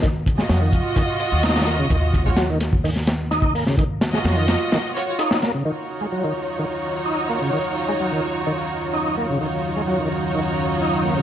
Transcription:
<<
  \new Staff \with { instrumentName = "String section" } { \time 4/4 \key ees \minor \tempo 4 = 128 r8. <f' ges' ees''>2.~ <f' ges' ees''>16~ | <f' ges' ees''>8. <f' ges' des''>16 r2. | r8. <f' ges' ees''>4.~ <f' ges' ees''>16 <f' ges' des''>16 <f' ges' des''>16 r4 | <ees' f' ges' des''>1~ |
<ees' f' ges' des''>1 | <ees' f' ges' des''>1 | }
  \new Staff \with { instrumentName = "Analog synth pad" } { \time 4/4 \key ees \minor r1 | r1 | r1 | <ees ges des' f''>1~ |
<ees ges des' f''>1~ | <ees ges des' f''>1 | }
  \new Staff \with { instrumentName = "Tonewheel organ" } { \clef bass \time 4/4 \key ees \minor ees16 r8 aes16 ges16 ees16 r8 ees16 r8. ees'8 bes16 des16 | ees16 r8 aes16 ges16 ees16 r8 ees16 r8. ees'8 bes16 des16 | ees16 r8 aes16 ges16 ees16 r8 ees16 r8. ees'8 bes16 des16 | ees16 r8 aes16 ges16 ees16 r8 ees16 r8. ees'8 bes16 des16 |
ees16 r8 aes16 ges16 ees16 r8 ees16 r8. ees'8 bes16 des16 | ees16 r8 aes16 ges16 ees16 r8 ees16 r8. ees'8 bes16 des16 | }
  \new Staff \with { instrumentName = "Upright bass" } { \clef bass \time 4/4 \key ees \minor ees,8. r16 f,8 r4 r16 ees,4 r16 | ees,1~ | ees,8. r16 f,8 r2 r8 | r1 |
r1 | r1 | }
  \new DrumStaff \with { instrumentName = "Drums" } \drummode { \time 4/4 <hh bd>8 <hh bd>16 sn16 <hh sn>8 <hh bd>8 <hh bd>8 hh8 <hh sn>32 <hh sn>32 <hh sn>32 <hh sn>32 <hh sn>8 | <hh bd>8 <hh bd>16 bd16 <hh sn>8 <hh sn>16 bd16 hho16 sn16 <hh sn>8 <hh sn>16 bd16 hho16 sn16 | <hh bd>8 <hh sn>16 sn16 <hh sn>8 <hh sn>8 <hh sn>8 hh8 hh16 sn16 <hh sn>8 | r4 r4 r4 r4 |
r4 r4 r4 r4 | r4 r4 r4 r4 | }
>>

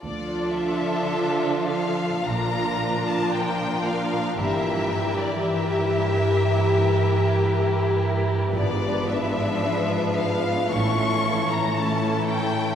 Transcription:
<<
  \new Staff \with { instrumentName = "Violin section" } { \time 4/4 \key d \minor \tempo 4 = 57 d''8 e''4 f''8 bes''8. a''16 g''8 f''8 | e''8. d''16 e''2~ e''8 r8 | d''8 e''4 eis''8 cis'''8. bes''16 a''8 g''8 | }
  \new Staff \with { instrumentName = "Violin section" } { \time 4/4 \key d \minor <f' a'>2 <f' bes'>2 | <g' bes'>4 <g' bes'>2. | <d' b'>2 <e' a'>4 <e' a'>4 | }
  \new Staff \with { instrumentName = "Viola section" } { \clef bass \time 4/4 \key d \minor <f d'>2 <f d'>2 | <e e'>4 <e e'>2. | <eis b>2 <e cis'>4 <e cis'>4 | }
  \new Staff \with { instrumentName = "Cello section" } { \clef bass \time 4/4 \key d \minor d2 bes,2 | g,1 | gis,2 a,2 | }
  \new Staff \with { instrumentName = "Double bass section" } { \clef bass \time 4/4 \key d \minor d,4 r4 bes,,4 r4 | g,,4 r2. | gis,,4 r4 a,,4 r4 | }
>>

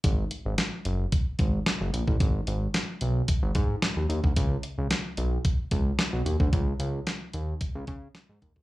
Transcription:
<<
  \new Staff \with { instrumentName = "Analog synth bass" } { \clef bass \time 4/4 \key gis \minor \tempo 4 = 111 gis,,8 r16 gis,,16 r8 fis,,8 r8 gis,,8 r16 fis,,16 ais,,16 a,,16 | gis,,8 gis,,8 r8 b,,8 r16 gis,,16 gis,8 r16 dis,16 dis,16 d,16 | cis,8 r16 cis,16 r8 b,,8 r8 cis,8 r16 b,,16 dis,16 d,16 | cis,8 cis,8 r8 dis,8 r16 cis,16 cis8 r16 gis,16 dis,16 d,16 | }
  \new DrumStaff \with { instrumentName = "Drums" } \drummode { \time 4/4 <hh bd>8 hh8 <hh sn>8 hh8 <hh bd>8 <hh bd>8 <hh sn>8 hh16 bd16 | <hh bd>8 hh8 <hh sn>8 hh8 <hh bd>8 <hh bd>8 <hh sn>8 hh16 bd16 | <hh bd>8 hh8 <hh sn>8 hh8 <hh bd>8 <hh bd>8 <hh sn>8 hh16 bd16 | <hh bd>8 hh8 <hh sn>8 hh8 <hh bd>8 <hh bd>8 <hh sn>8 <hh bd>16 bd16 | }
>>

